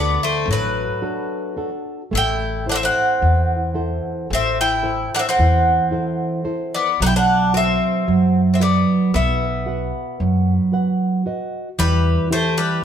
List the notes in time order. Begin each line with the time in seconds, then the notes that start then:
Already playing: D2 D3 B3 D4 F#4 A4 D5
0.23 A3 C5
0.48 A1 F#3 A3
0.53 B4
1.02 D4 F#4 A4
1.56 D4 F#4 A4
2.11 A1 A3 E4
2.17 G5
2.66 D4 E4 A4 C5
2.72 C4 E5 F#5
2.83 C4 F#5
3.21 E2 E3
3.74 E4 A4 C5
4.30 A1 A3 C4
4.35 E5
4.61 E4 G5
4.83 E4 A4 C5
5.15 D4 F#5
5.19 C4 E5
5.29 C4 F#5
5.39 E2 E3
5.91 E4 A4 C5
6.44 E4 A4 C5
6.75 B3 D5
7.00 B1 F#3 D#4 F#5
7.06 E4 G5
7.16 D4 F#5
7.54 C4 F#4 B4 E5 F#5
8.08 F#2 F#3
8.54 C4 E5
8.60 B3 F#4 B4 D5 F#5
9.14 B1 B3 E5
9.66 F#4 B4 F#5
10.20 F#2 F#3
10.72 F#4 B4 F#5
11.26 F#4 B4 D#5
11.79 E2 E3 G3 B4
12.30 A3 E4 G4 B4 C5
12.58 G3 B4